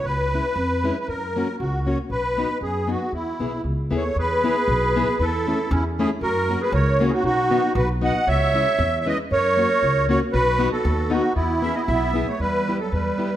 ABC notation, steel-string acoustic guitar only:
X:1
M:2/4
L:1/8
Q:"Swing" 1/4=116
K:E
V:1 name="Steel-string acoustic guitar"
z [G,CE] z [G,CE] | z [^A,CF] z [A,CF] | z [B,DF] z [B,DF] | z [B,EG] z [B,EG] |
z [B,EG] z [B,EG] | z [A,CE] z [A,CE] | z [^A,CF] z [A,CF] | z [B,DF] z [B,DF] |
z [G,CE] z [G,CE] | z [^A,CF] z [A,CF] | z [B,DF] z [B,DF] | z [B,EG] z [B,EG] |
[K:Em] z [B,EG] z [B,EG] |]